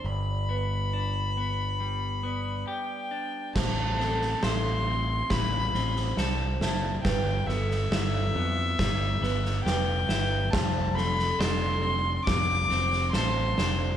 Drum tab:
CC |----------------|x---------------|----------------|----------------|
SD |----------------|o-ooo---o-ooo-o-|o-ooo---o-ooo-o-|o-ooo---o-ooo-o-|
BD |----------------|o-------o-------|o-------o-------|o-------o-------|